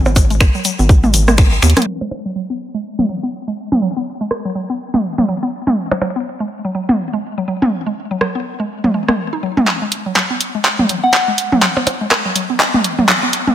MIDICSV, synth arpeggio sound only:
0, 0, Header, 1, 2, 480
1, 0, Start_track
1, 0, Key_signature, 5, "minor"
1, 0, Tempo, 487805
1, 1839, Time_signature, 4, 2, 24, 8
1, 13331, End_track
2, 0, Start_track
2, 0, Title_t, "Synth arpeggio sound"
2, 0, Program_c, 0, 84
2, 60, Note_on_c, 0, 59, 78
2, 83, Note_off_c, 0, 59, 0
2, 299, Note_on_c, 0, 56, 80
2, 323, Note_off_c, 0, 56, 0
2, 539, Note_on_c, 0, 54, 76
2, 598, Note_off_c, 0, 54, 0
2, 638, Note_on_c, 0, 54, 78
2, 694, Note_off_c, 0, 54, 0
2, 779, Note_on_c, 0, 59, 76
2, 803, Note_off_c, 0, 59, 0
2, 1019, Note_on_c, 0, 56, 77
2, 1043, Note_off_c, 0, 56, 0
2, 1259, Note_on_c, 0, 56, 81
2, 1298, Note_off_c, 0, 56, 0
2, 1499, Note_on_c, 0, 51, 81
2, 1538, Note_off_c, 0, 51, 0
2, 1598, Note_on_c, 0, 59, 75
2, 1631, Note_off_c, 0, 59, 0
2, 1738, Note_on_c, 0, 54, 78
2, 1778, Note_off_c, 0, 54, 0
2, 1978, Note_on_c, 0, 56, 75
2, 2002, Note_off_c, 0, 56, 0
2, 2219, Note_on_c, 0, 54, 73
2, 2278, Note_off_c, 0, 54, 0
2, 2318, Note_on_c, 0, 54, 82
2, 2374, Note_off_c, 0, 54, 0
2, 2459, Note_on_c, 0, 59, 69
2, 2483, Note_off_c, 0, 59, 0
2, 2700, Note_on_c, 0, 56, 72
2, 2723, Note_off_c, 0, 56, 0
2, 2940, Note_on_c, 0, 54, 72
2, 2998, Note_off_c, 0, 54, 0
2, 3039, Note_on_c, 0, 54, 69
2, 3094, Note_off_c, 0, 54, 0
2, 3180, Note_on_c, 0, 59, 73
2, 3203, Note_off_c, 0, 59, 0
2, 3420, Note_on_c, 0, 56, 76
2, 3443, Note_off_c, 0, 56, 0
2, 3660, Note_on_c, 0, 54, 70
2, 3718, Note_off_c, 0, 54, 0
2, 3760, Note_on_c, 0, 54, 84
2, 3814, Note_off_c, 0, 54, 0
2, 3900, Note_on_c, 0, 59, 75
2, 3923, Note_off_c, 0, 59, 0
2, 4140, Note_on_c, 0, 56, 74
2, 4163, Note_off_c, 0, 56, 0
2, 4380, Note_on_c, 0, 54, 73
2, 4438, Note_off_c, 0, 54, 0
2, 4479, Note_on_c, 0, 54, 76
2, 4534, Note_off_c, 0, 54, 0
2, 4621, Note_on_c, 0, 59, 73
2, 4643, Note_off_c, 0, 59, 0
2, 4860, Note_on_c, 0, 56, 71
2, 4883, Note_off_c, 0, 56, 0
2, 5100, Note_on_c, 0, 54, 75
2, 5158, Note_off_c, 0, 54, 0
2, 5199, Note_on_c, 0, 54, 81
2, 5254, Note_off_c, 0, 54, 0
2, 5340, Note_on_c, 0, 59, 79
2, 5363, Note_off_c, 0, 59, 0
2, 5580, Note_on_c, 0, 56, 69
2, 5603, Note_off_c, 0, 56, 0
2, 5820, Note_on_c, 0, 54, 76
2, 5878, Note_off_c, 0, 54, 0
2, 5919, Note_on_c, 0, 54, 74
2, 5974, Note_off_c, 0, 54, 0
2, 6060, Note_on_c, 0, 59, 74
2, 6083, Note_off_c, 0, 59, 0
2, 6299, Note_on_c, 0, 56, 73
2, 6323, Note_off_c, 0, 56, 0
2, 6539, Note_on_c, 0, 54, 76
2, 6598, Note_off_c, 0, 54, 0
2, 6639, Note_on_c, 0, 54, 80
2, 6694, Note_off_c, 0, 54, 0
2, 6780, Note_on_c, 0, 59, 73
2, 6803, Note_off_c, 0, 59, 0
2, 7019, Note_on_c, 0, 56, 76
2, 7043, Note_off_c, 0, 56, 0
2, 7259, Note_on_c, 0, 54, 77
2, 7318, Note_off_c, 0, 54, 0
2, 7358, Note_on_c, 0, 54, 74
2, 7414, Note_off_c, 0, 54, 0
2, 7499, Note_on_c, 0, 59, 70
2, 7523, Note_off_c, 0, 59, 0
2, 7739, Note_on_c, 0, 56, 76
2, 7762, Note_off_c, 0, 56, 0
2, 7979, Note_on_c, 0, 54, 75
2, 8038, Note_off_c, 0, 54, 0
2, 8078, Note_on_c, 0, 54, 86
2, 8134, Note_off_c, 0, 54, 0
2, 8218, Note_on_c, 0, 59, 73
2, 8242, Note_off_c, 0, 59, 0
2, 8459, Note_on_c, 0, 56, 75
2, 8482, Note_off_c, 0, 56, 0
2, 8699, Note_on_c, 0, 54, 72
2, 8758, Note_off_c, 0, 54, 0
2, 8799, Note_on_c, 0, 56, 77
2, 8881, Note_off_c, 0, 56, 0
2, 8939, Note_on_c, 0, 56, 99
2, 8962, Note_off_c, 0, 56, 0
2, 9179, Note_on_c, 0, 63, 77
2, 9218, Note_off_c, 0, 63, 0
2, 9278, Note_on_c, 0, 54, 73
2, 9361, Note_off_c, 0, 54, 0
2, 9419, Note_on_c, 0, 56, 70
2, 9443, Note_off_c, 0, 56, 0
2, 9659, Note_on_c, 0, 56, 78
2, 9683, Note_off_c, 0, 56, 0
2, 9899, Note_on_c, 0, 54, 75
2, 9958, Note_off_c, 0, 54, 0
2, 9999, Note_on_c, 0, 54, 83
2, 10054, Note_off_c, 0, 54, 0
2, 10139, Note_on_c, 0, 59, 70
2, 10162, Note_off_c, 0, 59, 0
2, 10378, Note_on_c, 0, 56, 74
2, 10402, Note_off_c, 0, 56, 0
2, 10619, Note_on_c, 0, 54, 76
2, 10678, Note_off_c, 0, 54, 0
2, 10719, Note_on_c, 0, 54, 75
2, 10774, Note_off_c, 0, 54, 0
2, 10859, Note_on_c, 0, 59, 77
2, 10883, Note_off_c, 0, 59, 0
2, 11099, Note_on_c, 0, 56, 78
2, 11123, Note_off_c, 0, 56, 0
2, 11340, Note_on_c, 0, 54, 74
2, 11398, Note_off_c, 0, 54, 0
2, 11439, Note_on_c, 0, 54, 85
2, 11494, Note_off_c, 0, 54, 0
2, 11578, Note_on_c, 0, 59, 75
2, 11602, Note_off_c, 0, 59, 0
2, 11819, Note_on_c, 0, 56, 75
2, 11842, Note_off_c, 0, 56, 0
2, 12058, Note_on_c, 0, 54, 73
2, 12117, Note_off_c, 0, 54, 0
2, 12158, Note_on_c, 0, 54, 75
2, 12214, Note_off_c, 0, 54, 0
2, 12299, Note_on_c, 0, 59, 77
2, 12322, Note_off_c, 0, 59, 0
2, 12539, Note_on_c, 0, 56, 72
2, 12563, Note_off_c, 0, 56, 0
2, 12778, Note_on_c, 0, 54, 76
2, 12837, Note_off_c, 0, 54, 0
2, 12878, Note_on_c, 0, 54, 82
2, 12934, Note_off_c, 0, 54, 0
2, 13018, Note_on_c, 0, 59, 80
2, 13042, Note_off_c, 0, 59, 0
2, 13259, Note_on_c, 0, 56, 77
2, 13282, Note_off_c, 0, 56, 0
2, 13331, End_track
0, 0, End_of_file